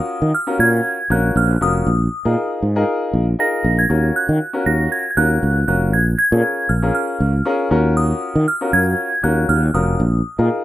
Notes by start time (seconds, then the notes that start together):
Already playing: C#4 F4 F#4 A#4 D#6
0.22 D#3
0.34 F6
0.47 C#4 F4 F#4 A#4
0.59 A#2 G#6
1.10 A#1 C#4 F4 F#4 A#4 F#6
1.36 A#1 F6
1.61 F1 C#4 F4 F#4 A#4 D#6
1.87 A#1
2.25 A#2 D#4 F4 G#4 A#4
2.63 G#2
2.76 D#4 F4 G#4 A#4
3.13 A#1
3.39 D#4 F4 G#4 A#4 A#6
3.64 A#1
3.79 G#6
3.89 D#2 C#4 F4 F#4 A#4
4.16 F#6
4.29 D#3
4.53 C#4 F4 F#4 A#4
4.66 D#2 A#6
4.92 G#6
5.11 G#6
5.17 D#2 C#4 F4 F#4 A#4 F#6
5.43 C#2
5.68 F1 C#4 F4 F#4 A#4 F#6
5.93 A#1 G#6
6.19 G#6
6.32 A#2 C#4 F4 G#4 A4
6.39 A#4
6.69 A#1 F6
6.82 C#4 F4 G#4 A#4
6.95 F6
7.20 C#2
7.45 C#4 F4 G#4 A#4
7.71 D#2 C#4 F4 F#4 A#4
7.97 D#6
8.35 D#3
8.48 F6
8.61 C#4 F4 F#4 A#4
8.73 F#2 G#6
9.23 D#2 C#4 F4 F#4 A#4 F#6
9.49 D#2 F6
9.74 F1 C#4 F4 F#4 A#4 D#6
10.00 A#1
10.38 A#2 D#4 F4 G#4 A#4